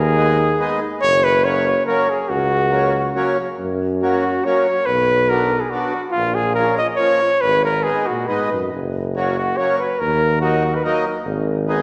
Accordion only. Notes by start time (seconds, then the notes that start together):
0.16 G#3 B3 D#4
0.59 G#3 B3 D#4
1.44 F#3 A#3 C#4
1.87 F#3 A#3 C#4
2.71 F#3 A#3 C#4
3.15 F#3 A#3 C#4
4.02 F#3 A#3 C#4
4.46 F#3 A#3 C#4
5.30 F#3 B3 D4
5.71 F#3 B3 D4
6.57 F3 A#3 C#4
6.99 F3 A#3 C#4
7.84 G#3 B3 D#4
8.27 G#3 B3 D#4
9.16 F#3 A#3 C#4
9.58 F#3 A#3 C#4
10.42 F#3 A#3 D#4
10.85 F#3 A#3 D#4
11.68 G#3 B3 D#4